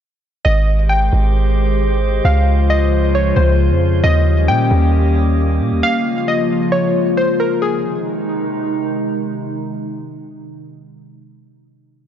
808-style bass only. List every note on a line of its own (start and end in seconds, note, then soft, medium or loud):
0.46 1.10 G#1 loud
1.13 2.21 G#1 loud
2.25 3.33 C#2 loud
3.37 3.72 C#2 loud
3.70 4.02 F2 loud
4.04 4.50 D#2 loud
4.49 4.70 A#2 loud
4.71 5.62 D#2 loud
5.61 5.73 A#2 loud
5.72 5.82 D#2 loud